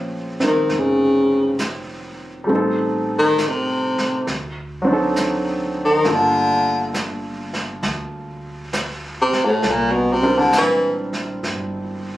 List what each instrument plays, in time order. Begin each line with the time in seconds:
Already playing: upright bass A#1, grand piano F3 A#3 C4 C#4 G#4
0.40 grand piano C4 D#4 A#4, snare
0.47 baritone saxophone D#3
0.69 upright bass F1, brush sweep, snare
0.78 baritone saxophone C#3
1.59 snare, hi-hat pedal
2.44 grand piano G3 A3
2.49 upright bass A1, grand piano C4 D#4, brush sweep
2.55 grand piano A4
3.19 baritone saxophone D#3
3.38 snare, hi-hat pedal
3.48 baritone saxophone C3
3.98 snare
4.27 upright bass D2, brush sweep, snare
4.82 grand piano F#3 C4
4.87 grand piano D4 D#4
4.93 grand piano A4
5.16 snare, hi-hat pedal
5.85 baritone saxophone D#3
6.04 upright bass G1, grand piano G3 A#3 D4 F4 A4, brush sweep, snare
6.14 baritone saxophone D3
6.94 snare, hi-hat pedal
7.53 snare
7.83 upright bass D2, brush sweep, snare
8.73 snare, hi-hat pedal
9.22 baritone saxophone C3
9.33 muted upright bass stroke, snare
9.45 baritone saxophone A2
9.62 upright bass C2, brush sweep, snare
9.71 baritone saxophone A#2
9.92 baritone saxophone B2
10.12 baritone saxophone C3
10.22 grand piano G3 C4 D4 E4 A#4
10.38 baritone saxophone D3
10.52 upright bass A#1, snare, hi-hat pedal
10.58 baritone saxophone E3
11.13 snare
11.43 upright bass G1, brush sweep, snare